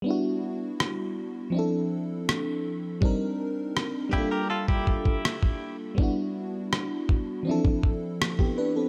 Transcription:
<<
  \new Staff \with { instrumentName = "Clean electric guitar" } { \time 4/4 \key e \phrygian \tempo 4 = 81 r1 | r4. <e' g'>16 <g' bes'>16 <f' a'>16 <e' g'>4. r16 | r1 | }
  \new Staff \with { instrumentName = "FM electric piano" } { \time 4/4 \key e \phrygian << { r1 | r1 | r2. r16 <b g'>16 <d' b'>16 <c' a'>16 | } \\ { <g b d' e' fis'>2 <f c' d' e' a'>2 | <g c' d' ees' bes'>4. <g bes d' f' a'>2~ <g bes d' f' a'>8 | <g b d' e' fis'>2 <e f c' d' e' a'>2 | } >> }
  \new DrumStaff \with { instrumentName = "Drums" } \drummode { \time 4/4 r4 ss4 r4 ss4 | bd4 ss8 bd8 r16 bd16 bd16 bd16 ss16 bd8. | bd4 ss8 bd8 r16 bd16 bd8 ss16 bd8. | }
>>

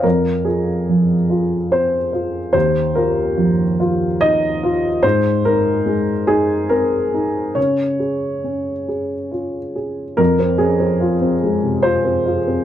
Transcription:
\new Staff \with { instrumentName = "Upright piano" } { \time 3/4 \key f \minor \tempo 4 = 72 << { bes'8 aes'4. c''4 | c''8 bes'4. ees''4 | c''8 bes'4 aes'8 bes'4 | des''2 r4 |
bes'8 aes'4. c''4 | } \\ { f,8 f'8 f8 f'8 c'8 f'8 | ees,8 f'8 f8 f'8 ees'8 f'8 | aes,8 ees'8 aes8 ees'8 c'8 ees'8 | des8 aes'8 des'8 aes'8 f'8 aes'8 |
f,16 c'16 des'16 c'16 f'16 c'16 aes16 c16 f'16 c'16 f'16 c'16 | } >> }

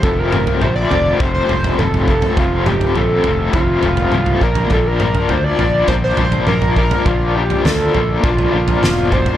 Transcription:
<<
  \new Staff \with { instrumentName = "Analog synth lead" } { \time 4/4 \key f \major \tempo 4 = 102 a'16 bes'8. c''16 d''8. c''16 c''8. a'8 a'8 | f'8 g'8 a'4 f'4. bes'8 | a'16 bes'8. c''16 d''8. c''16 c''8. bes'8 bes'8 | f'8 g'8 a'4 f'4. c''8 | }
  \new Staff \with { instrumentName = "Overdriven electric guitar" } { \clef bass \time 4/4 \key f \major <f, c f a c'>8 <f, c f a c'>8 <f, c f a c'>8 <f, c f a c'>8 <f, c f a c'>8 <f, c f a c'>8 <f, c f a c'>8 <f, c f a c'>8 | <f, c f a c'>8 <f, c f a c'>8 <f, c f a c'>8 <f, c f a c'>8 <f, c f a c'>8 <f, c f a c'>8 <f, c f a c'>8 <bes, f bes d'>8 | <bes, f bes d'>8 <bes, f bes d'>8 <bes, f bes d'>8 <bes, f bes d'>8 <bes, f bes d'>8 <bes, f bes d'>8 <bes, f bes d'>8 <bes, f bes d'>8 | <bes, f bes d'>8 <bes, f bes d'>8 <bes, f bes d'>8 <bes, f bes d'>8 <bes, f bes d'>8 <bes, f bes d'>8 <bes, f bes d'>8 <bes, f bes d'>8 | }
  \new Staff \with { instrumentName = "Fingered electric bass" } { \clef bass \time 4/4 \key f \major f,,4 bes,,8 f,,8 f,,8 f,,8 f,,4 | f,,4 bes,,8 f,,8 f,,8 f,,8 c,8 bes,,8 | bes,,4 d,8 bes,,8 bes,,8 bes,,8 bes,,4 | bes,,4 d,8 bes,,8 bes,,8 bes,,8 e,,4 | }
  \new DrumStaff \with { instrumentName = "Drums" } \drummode { \time 4/4 <bd tomfh>8 toml16 tomfh16 tomfh8 tomfh8 <bd tomfh>8 tomfh16 tomfh16 toml16 tomfh16 bd16 tomfh16 | <bd tomfh>8 toml16 tomfh16 tomfh8 tomfh8 <bd tomfh>8 tomfh16 tomfh16 toml16 tomfh16 bd16 tomfh16 | <bd tomfh>8 toml16 tomfh16 tomfh8 tomfh8 <bd tomfh>8 tomfh16 tomfh16 toml16 tomfh16 bd16 tomfh16 | <bd tomfh>8. tomfh16 <sn tomfh>8 tomfh8 <bd tomfh>16 tomfh8 tomfh16 <sn toml>8 <bd toml>16 tomfh16 | }
>>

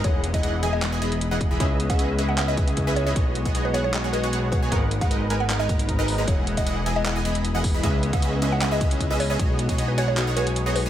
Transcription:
<<
  \new Staff \with { instrumentName = "Synth pluck" } { \time 4/4 \key b \major \tempo 4 = 154 cis''8 r16 dis''8 r8 dis''4 r4 r16 | r8. fis''8 r8 fis''16 fis''16 dis''8 r8. cis''16 cis''16 | r4 r16 b'16 cis''16 cis''16 r8 b'8 r8 b'8 | r8. fis''8 r8 fis''16 fis''16 dis''8 r4 r16 |
cis''8 r16 dis''8 r8 dis''4 r4 r16 | r8. fis''8 r8 fis''16 fis''16 dis''8 r8. cis''16 cis''16 | r4 r16 b'16 cis''16 cis''16 r8 b'8 r8 b'8 | }
  \new Staff \with { instrumentName = "Supersaw synth" } { \time 4/4 \key b \major <e e' gis' dis'' fis''>8. <e e' gis' dis'' fis''>16 <e e' gis' dis'' fis''>8 <e e' gis' dis'' gis''>8 <e e' gis' dis'' fis''>16 <e e' gis' dis'' gis''>16 <e e' gis' dis'' b''>8. <e e' gis' dis'' fis''>8 <e e' gis' dis'' b''>16 | <cis' gis' b' dis'' e''>8. <cis' gis' b' dis'' e''>16 <cis' gis' b' dis'' e''>8 <cis' gis' b' dis'' e''>8 <cis' gis' b' dis'' e''>16 <cis' gis' b' dis'' e''>16 <cis' gis' b' dis'' e''>8. <cis' gis' b' dis'' e''>8 <cis' gis' b' dis'' e''>16 | <b fis' gis' cis'' dis''>8. <b fis' gis' cis'' dis''>16 <b fis' gis' cis'' dis''>8 <b fis' gis' cis'' fis''>8 <b fis' gis' cis'' dis''>16 <b fis' gis' cis'' fis''>16 <b fis' gis' cis'' dis''>16 <b fis' gis' cis'' fis''>16 <b fis' gis' cis'' fis''>8 <b fis' gis' cis'' fis''>16 <b fis' gis' cis'' gis''>16 | <gis dis' ais' b' fis''>8. <gis dis' ais' b' fis''>16 <gis dis' ais' b' dis''>8 <gis dis' ais' b' gis''>8 <gis dis' ais' b' fis''>16 <gis dis' ais' b' gis''>16 <gis dis' ais' b' ais''>8. <gis dis' ais' b' dis''>8 <gis dis' ais' b' ais''>16 |
<e e' fis''>8. <e e' gis' dis'' fis''>16 <e e' gis' dis'' fis''>8 <e e' gis' dis'' gis''>8 <e e' gis' dis'' fis''>16 <e e' gis' dis'' gis''>16 <e e' gis' dis'' b''>8. <e e' gis' dis'' fis''>8 <e e' gis' dis'' b''>16 | <cis' gis' b' dis'' e''>8. <cis' gis' b' dis'' e''>16 <cis' gis' b' dis'' e''>8 <cis' gis' b' dis'' e''>8 <cis' gis' b' dis'' e''>16 <cis' gis' b' dis'' e''>16 <cis' gis' b' dis'' e''>8. <cis' gis' b' dis'' e''>8 <cis' gis' b' dis'' e''>16 | <b fis' gis' cis'' dis''>8. <b fis' gis' cis'' dis''>16 <b fis' gis' cis'' dis''>8 <b fis' gis' cis'' fis''>8 <b fis' gis' cis'' dis''>16 <b fis' gis' cis'' fis''>16 <b fis' gis' cis'' gis''>8. <b fis' gis' cis'' dis''>8 <b fis' gis' cis'' gis''>16 | }
  \new Staff \with { instrumentName = "Harp" } { \time 4/4 \key b \major gis16 r16 b16 dis'16 e'16 r16 dis'16 b16 gis16 r16 b16 dis'16 e'16 r16 dis'16 b16 | gis16 r16 b16 cis'16 e'16 r16 cis'16 b16 gis16 r16 b16 cis'16 e'16 r16 cis'16 b16 | gis16 r16 b16 cis'16 dis'16 r16 cis'16 b16 gis16 r16 b16 cis'16 dis'16 r16 cis'16 b16 | gis16 r16 ais16 b16 dis'16 r16 b16 ais16 gis16 r16 ais16 b16 dis'16 r16 b16 ais16 |
gis16 r16 b16 dis'16 e'16 r16 dis'16 b16 gis16 r16 b16 dis'16 e'16 r16 dis'16 b16 | gis16 r16 b16 cis'16 e'16 r16 cis'16 b16 gis16 r16 b16 cis'16 e'16 r16 cis'16 b16 | gis16 r16 b16 cis'16 dis'16 r16 cis'16 b16 gis16 r16 b16 cis'16 dis'16 r16 cis'16 b16 | }
  \new Staff \with { instrumentName = "Analog synth bass" } { \clef bass \time 4/4 \key b \major e,,1 | cis,1 | b,,1 | gis,,1 |
e,,1 | cis,1 | b,,1 | }
  \new DrumStaff \with { instrumentName = "Drums" } \drummode { \time 4/4 <hh bd>8 hh16 <hh bd>16 hh8 hh8 <hc hh>8 hh16 hh16 hh8 <hh bd>8 | <hh bd>8 hh16 <hh bd>16 hh8 hh8 <hc hh>8 <hh bd>16 hh16 <hh bd>8 hh8 | <hh bd>8 hh16 <hh bd>16 hh8 hh8 <hc hh>8 hh16 hh16 hh8 <hh bd>8 | <hh bd>8 hh16 <hh bd>16 hh8 hh8 <hc hh>8 <hh bd>16 hh16 <hh bd>8 hho8 |
<hh bd>8 hh16 <hh bd>16 hh8 hh8 <hc hh>8 hh16 hh16 hh8 <hho bd>8 | <hh bd>8 hh16 <hh bd>16 hh8 hh8 <hc hh>8 <hh bd>16 hh16 <hh bd>8 hho8 | <hh bd>8 hh16 <hh bd>16 hh8 hh8 <hc hh>8 hh16 hh16 hh8 hho8 | }
>>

